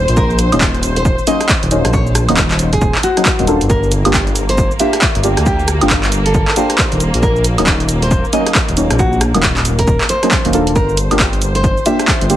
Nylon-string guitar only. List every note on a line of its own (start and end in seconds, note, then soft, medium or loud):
0.00 0.10 C5 medium
0.17 0.39 A#4 loud
0.97 1.18 C5 loud
1.27 1.87 D#5 medium
1.93 2.15 C#5 loud
2.73 2.94 G#4 medium
3.04 3.63 F#4 medium
3.69 3.91 A#4 medium
4.49 4.71 C5 loud
4.80 5.39 E5 medium
5.46 5.68 G4 medium
6.26 6.47 A4 medium
6.57 7.16 C5 medium
7.23 7.44 A#4 medium
8.03 8.24 C5 medium
8.33 8.92 D#5 medium
8.99 9.21 F#4 loud
9.79 10.00 A#4 medium
10.10 10.69 C5 medium
10.76 10.97 A#4 medium
11.56 11.77 C5 medium
11.86 12.37 E5 medium